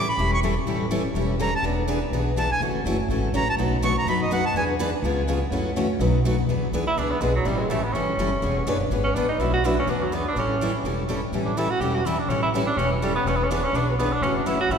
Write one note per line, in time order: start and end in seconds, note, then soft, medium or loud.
0.09 0.31 B5 medium
0.17 0.57 E1 medium
0.17 0.36 E3 medium
0.17 0.37 G3 medium
0.17 0.37 C#4 medium
0.17 0.37 E4 medium
0.17 0.37 A4 medium
0.34 0.40 C#6 loud
0.43 0.53 E3 medium
0.43 0.53 G3 medium
0.43 0.54 C#4 medium
0.43 0.53 E4 medium
0.43 0.54 A4 medium
0.66 1.05 A1 medium
0.66 0.85 E3 medium
0.66 0.85 G3 medium
0.66 0.85 C#4 medium
0.66 0.85 E4 medium
0.66 0.85 A4 medium
0.91 1.01 E3 loud
0.91 1.01 G3 medium
0.91 1.01 C#4 medium
0.91 1.01 E4 loud
0.91 1.01 A4 loud
1.14 1.53 E1 medium
1.14 1.33 E3 medium
1.14 1.34 G3 medium
1.14 1.33 C#4 medium
1.14 1.34 E4 medium
1.14 1.34 A4 medium
1.40 1.50 E3 medium
1.40 1.50 G3 loud
1.40 1.50 C#4 medium
1.40 1.50 E4 medium
1.40 1.50 A4 medium
1.40 1.54 A#5 medium
1.55 1.65 A5 loud
1.63 2.02 E1 medium
1.63 1.82 E3 medium
1.63 1.82 B3 medium
1.63 1.82 D4 medium
1.63 1.82 G#4 medium
1.63 1.82 B4 medium
1.88 1.98 E3 medium
1.88 1.98 B3 medium
1.88 1.98 D4 loud
1.88 1.98 G#4 loud
1.88 1.99 B4 loud
2.11 2.50 B1 medium
2.11 2.31 E3 medium
2.11 2.31 B3 medium
2.11 2.31 D4 medium
2.11 2.31 G#4 medium
2.11 2.31 B4 medium
2.37 2.47 E3 medium
2.37 2.47 B3 medium
2.37 2.47 D4 loud
2.37 2.47 G#4 medium
2.37 2.48 B4 medium
2.37 2.51 A5 medium
2.52 2.61 G#5 loud
2.60 2.80 F#1 medium
2.60 2.79 C#3 medium
2.60 2.79 E3 medium
2.60 2.79 F#3 medium
2.60 2.79 A3 medium
2.60 2.80 C#4 medium
2.60 2.80 E4 medium
2.60 2.79 F#4 medium
2.60 2.80 A4 medium
2.84 3.05 F#1 medium
2.84 2.95 C#3 medium
2.84 2.95 E3 loud
2.84 2.96 F#3 loud
2.84 2.95 A3 medium
2.84 2.96 C#4 medium
2.84 2.96 E4 loud
2.84 2.96 F#4 loud
2.84 2.96 A4 loud
3.08 3.29 G#1 medium
3.08 3.27 C#3 medium
3.08 3.28 E3 medium
3.08 3.28 F#3 medium
3.08 3.27 A3 medium
3.08 3.28 C#4 medium
3.08 3.28 E4 medium
3.08 3.28 F#4 medium
3.08 3.28 A4 medium
3.32 3.53 A1 medium
3.32 3.44 C#3 medium
3.32 3.44 E3 loud
3.32 3.44 F#3 medium
3.32 3.44 A3 medium
3.32 3.44 C#4 loud
3.32 3.44 E4 medium
3.32 3.44 F#4 loud
3.32 3.44 A4 loud
3.37 3.48 A#5 loud
3.50 3.55 A5 loud
3.57 3.96 B1 medium
3.57 3.76 B2 medium
3.57 3.76 F#3 medium
3.57 3.76 A3 medium
3.57 3.76 D#4 medium
3.57 3.76 F#4 medium
3.57 3.76 B4 medium
3.82 3.92 B2 loud
3.82 3.93 F#3 loud
3.82 3.92 A3 loud
3.82 3.93 D#4 loud
3.82 3.93 F#4 loud
3.82 3.93 B4 loud
3.82 3.96 C#6 loud
3.98 4.07 A#5 loud
4.06 4.44 F#2 medium
4.06 4.24 B2 medium
4.06 4.25 F#3 medium
4.06 4.25 A3 medium
4.06 4.25 D#4 medium
4.06 4.25 F#4 medium
4.06 4.25 B4 medium
4.06 4.21 B5 loud
4.22 4.31 D#5 medium
4.31 4.41 B2 medium
4.31 4.41 F#3 medium
4.31 4.41 A3 medium
4.31 4.41 D#4 loud
4.31 4.41 F#4 medium
4.31 4.41 B4 loud
4.31 4.45 F#5 medium
4.46 4.55 A5 loud
4.54 4.93 E2 medium
4.54 4.73 E3 medium
4.54 4.73 B3 medium
4.54 4.73 D4 medium
4.54 4.74 G#4 medium
4.54 4.74 B4 medium
4.54 4.64 G#5 loud
4.79 4.89 E3 loud
4.79 4.89 B3 loud
4.79 4.89 D4 loud
4.79 4.90 G#4 loud
4.79 4.90 B4 loud
5.02 5.41 C#2 loud
5.02 5.22 C#3 medium
5.02 5.22 G#3 medium
5.02 5.22 B3 medium
5.02 5.22 F4 medium
5.02 5.22 G#4 medium
5.28 5.38 C#3 loud
5.28 5.38 G#3 medium
5.28 5.38 B3 medium
5.28 5.38 F4 loud
5.28 5.38 G#4 medium
5.51 5.90 F#2 medium
5.51 5.69 C#3 medium
5.51 5.70 E3 medium
5.51 5.70 F#3 medium
5.51 5.70 A3 medium
5.51 5.70 C#4 medium
5.51 5.70 E4 medium
5.51 5.70 F#4 medium
5.51 5.70 A4 medium
5.76 5.86 C#3 medium
5.76 5.86 E3 medium
5.76 5.86 F#3 loud
5.76 5.86 A3 loud
5.76 5.86 C#4 loud
5.76 5.86 E4 loud
5.76 5.86 F#4 loud
5.76 5.87 A4 loud
5.99 6.38 B1 loud
5.99 6.18 B2 medium
5.99 6.18 F#3 medium
5.99 6.18 A3 medium
5.99 6.18 D#4 medium
5.99 6.18 F#4 medium
5.99 6.18 B4 medium
6.25 6.35 B2 medium
6.25 6.35 F#3 medium
6.25 6.35 A3 medium
6.25 6.35 D#4 medium
6.25 6.35 F#4 medium
6.25 6.35 B4 loud
6.48 6.67 E2 medium
6.48 6.67 E3 medium
6.48 6.67 B3 medium
6.48 6.67 D4 medium
6.48 6.67 G#4 medium
6.48 6.67 B4 medium
6.72 6.93 D2 medium
6.72 6.83 E3 loud
6.72 6.83 B3 medium
6.72 6.83 D4 loud
6.72 6.84 G#4 loud
6.72 6.84 B4 loud
6.87 6.99 E4 loud
6.96 7.17 C#2 medium
6.96 7.15 E3 medium
6.96 7.15 B3 medium
6.96 7.13 D4 medium
6.96 7.16 D4 medium
6.96 7.16 G#4 medium
6.96 7.16 B4 medium
7.11 7.23 B3 medium
7.21 7.42 B1 medium
7.21 7.31 E3 medium
7.21 7.35 G#3 medium
7.21 7.31 B3 medium
7.21 7.31 D4 medium
7.21 7.31 G#4 medium
7.21 7.32 B4 loud
7.35 7.48 F#3 medium
7.44 7.64 A1 medium
7.44 7.63 E3 medium
7.44 7.63 G3 medium
7.44 7.60 G3 medium
7.44 7.63 C#4 medium
7.44 7.63 E4 medium
7.44 7.64 A4 medium
7.58 7.71 G#3 medium
7.69 7.90 A1 medium
7.69 7.80 E3 medium
7.69 7.80 G3 medium
7.69 7.84 A3 medium
7.69 7.80 C#4 loud
7.69 7.80 E4 loud
7.69 7.80 A4 loud
7.83 7.94 B3 medium
7.93 8.14 G1 medium
7.93 8.12 E3 medium
7.93 8.12 G3 medium
7.93 8.66 C#4 medium
7.93 8.12 C#4 medium
7.93 8.13 E4 medium
7.93 8.13 A4 medium
8.17 8.38 F#1 medium
8.17 8.29 E3 medium
8.17 8.29 G3 medium
8.17 8.29 C#4 medium
8.17 8.29 E4 medium
8.17 8.29 A4 loud
8.42 8.62 E1 medium
8.42 8.60 E3 medium
8.42 8.60 B3 medium
8.42 8.61 D4 medium
8.42 8.61 G#4 medium
8.42 8.61 B4 medium
8.66 8.87 F#1 medium
8.66 8.77 E3 loud
8.66 8.77 B3 loud
8.66 8.77 D4 loud
8.66 8.77 G#4 loud
8.66 8.77 B4 loud
8.90 9.11 G#1 medium
8.90 9.09 E3 medium
8.90 9.09 B3 medium
8.90 9.09 D4 medium
8.90 9.09 G#4 medium
8.90 9.10 B4 medium
9.04 9.16 C#4 medium
9.14 9.35 A1 medium
9.14 9.26 E3 medium
9.14 9.26 B3 medium
9.14 9.28 D4 medium
9.14 9.26 D4 medium
9.14 9.26 G#4 medium
9.14 9.26 B4 loud
9.29 9.42 D#4 medium
9.38 9.77 B1 medium
9.38 9.57 B2 medium
9.38 9.57 F#3 medium
9.38 9.58 A3 medium
9.38 9.58 D4 medium
9.38 9.53 E4 medium
9.38 9.58 F#4 medium
9.38 9.58 B4 medium
9.53 9.66 F#4 loud
9.64 9.74 B2 loud
9.64 9.74 F#3 medium
9.64 9.74 A3 loud
9.64 9.74 D4 loud
9.64 9.78 E4 medium
9.64 9.74 F#4 loud
9.64 9.75 B4 loud
9.79 9.91 C#4 medium
9.87 10.26 E2 medium
9.87 10.05 E3 medium
9.87 10.05 B3 medium
9.87 10.06 D4 medium
9.87 10.04 D4 medium
9.87 10.06 G#4 medium
9.87 10.06 B4 medium
10.03 10.15 F#3 medium
10.12 10.22 E3 medium
10.12 10.22 B3 medium
10.12 10.26 B3 medium
10.12 10.23 D4 medium
10.12 10.23 G#4 medium
10.12 10.23 B4 medium
10.28 10.41 D4 loud
10.35 10.74 A1 medium
10.35 10.54 E3 medium
10.35 10.54 G3 medium
10.35 10.54 C#4 medium
10.35 10.75 C#4 medium
10.35 10.55 E4 medium
10.35 10.55 A4 medium
10.61 10.71 E3 medium
10.61 10.71 G3 loud
10.61 10.71 C#4 loud
10.61 10.71 E4 loud
10.61 10.71 A4 loud
10.84 11.23 E1 medium
10.84 11.02 E3 medium
10.84 11.03 G3 medium
10.84 11.03 C#4 medium
10.84 11.03 E4 medium
10.84 11.03 A4 medium
11.09 11.19 E3 medium
11.09 11.19 G3 medium
11.09 11.19 C#4 medium
11.09 11.19 E4 medium
11.09 11.20 A4 medium
11.32 11.71 A1 medium
11.32 11.51 E3 medium
11.32 11.51 G3 medium
11.32 11.51 C#4 medium
11.32 11.51 E4 medium
11.32 11.51 A4 medium
11.46 11.59 D4 medium
11.57 11.67 E3 loud
11.57 11.67 G3 medium
11.57 11.67 C#4 loud
11.57 11.71 E4 medium
11.57 11.67 E4 loud
11.57 11.68 A4 loud
11.70 11.82 F#4 loud
11.80 12.19 E1 medium
11.80 11.99 E3 medium
11.80 11.99 G3 medium
11.80 12.00 C#4 medium
11.80 12.00 E4 medium
11.80 11.97 G4 loud
11.80 12.00 A4 medium
11.95 12.07 F#4 medium
12.05 12.16 E3 medium
12.05 12.16 G3 loud
12.05 12.16 C#4 loud
12.05 12.20 E4 medium
12.05 12.16 E4 loud
12.05 12.17 A4 loud
12.19 12.30 D4 medium
12.28 12.67 A1 medium
12.28 12.47 E3 medium
12.28 12.48 G3 medium
12.28 12.42 C#4 medium
12.28 12.48 C#4 medium
12.28 12.48 E4 medium
12.28 12.48 A4 medium
12.43 12.49 E4 medium
12.55 12.64 E3 loud
12.55 12.64 G3 loud
12.55 12.65 C#4 loud
12.55 12.65 E4 medium
12.55 12.65 A4 loud
12.67 12.79 D4 loud
12.76 13.15 E1 medium
12.76 12.96 E3 medium
12.76 12.96 G3 medium
12.76 12.90 C#4 medium
12.76 12.96 C#4 medium
12.76 12.96 E4 medium
12.76 12.97 A4 medium
12.91 13.04 E3 medium
13.02 13.12 E3 medium
13.02 13.12 G3 medium
13.02 13.15 G3 medium
13.02 13.12 C#4 medium
13.02 13.12 E4 medium
13.02 13.13 A4 medium
13.15 13.29 B3 loud
13.25 13.64 E1 medium
13.25 13.44 E3 medium
13.25 13.44 B3 medium
13.25 13.37 C#4 medium
13.25 13.44 D4 medium
13.25 13.45 G#4 medium
13.25 13.45 B4 medium
13.36 13.44 B3 medium
13.43 13.52 C#4 medium
13.51 13.60 E3 medium
13.51 13.61 B3 loud
13.51 13.66 D4 medium
13.51 13.61 D4 medium
13.51 13.61 G#4 medium
13.51 13.61 B4 loud
13.64 13.77 C#4 loud
13.73 14.12 B1 medium
13.73 13.92 E3 medium
13.73 13.92 B3 medium
13.73 13.92 D4 medium
13.73 13.88 D4 loud
13.73 13.92 G#4 medium
13.73 13.93 B4 medium
13.88 14.00 F#3 medium
13.98 14.09 E3 medium
13.98 14.14 B3 medium
13.98 14.09 B3 medium
13.98 14.09 D4 medium
13.98 14.09 G#4 medium
13.98 14.09 B4 loud
14.12 14.24 D4 loud
14.21 14.60 F#1 medium
14.21 14.40 C#3 medium
14.21 14.41 E3 medium
14.21 14.40 F#3 medium
14.21 14.41 A3 medium
14.21 14.36 C#4 loud
14.21 14.41 C#4 medium
14.21 14.40 E4 medium
14.21 14.41 F#4 medium
14.21 14.41 A4 medium
14.36 14.48 D4 medium
14.46 14.57 C#3 medium
14.46 14.57 E3 medium
14.46 14.56 F#3 medium
14.46 14.57 A3 medium
14.46 14.56 C#4 loud
14.46 14.60 E4 medium
14.46 14.57 E4 loud
14.46 14.57 F#4 medium
14.46 14.57 A4 loud
14.60 14.73 F#4 loud
14.69 14.78 G#1 medium
14.69 14.78 C#3 medium
14.69 14.78 E3 medium
14.69 14.78 F#3 medium
14.69 14.78 A3 medium
14.69 14.78 C#4 medium
14.69 14.78 E4 medium
14.69 14.78 F#4 medium
14.69 14.78 A4 medium